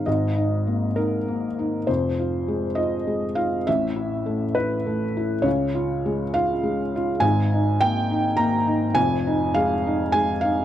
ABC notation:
X:1
M:3/4
L:1/8
Q:1/4=101
K:Ab
V:1 name="Felt piano"
e3 B3 | c3 e2 f | =e3 _c3 | d3 f2 z |
a2 g2 b2 | a2 f2 a f |]
V:2 name="Felt piano"
[A,,,A,,] E B, E B, E | [F,,,F,,] F A, F A, F | [=A,,,=A,,] =E =A, E A, E | [D,,D,] F A, F A, F |
[A,,,A,,] E B, E B, E | [F,,,F,,] E A, E A, E |]